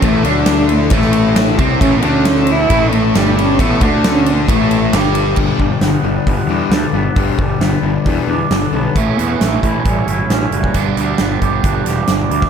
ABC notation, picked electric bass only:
X:1
M:4/4
L:1/8
Q:1/4=134
K:Amix
V:1 name="Picked electric bass" clef=bass
A,,, D,,3 A,,,3 =C,, | A,,, D,,3 A,,,2 G,,,2 | A,,, D,,3 A,,,2 G,,,2 | G,,, G,,, G,,, G,,, G,,, E,, D,, G,,, |
G,,, G,,, G,,, G,,, E,, E,, G,,, B,,, | A,,, E,, A,,, A,,, A,,, G,,, A,,, F,,, | G,,, D,, G,,, G,,, G,,, E,,, G,,, D,, |]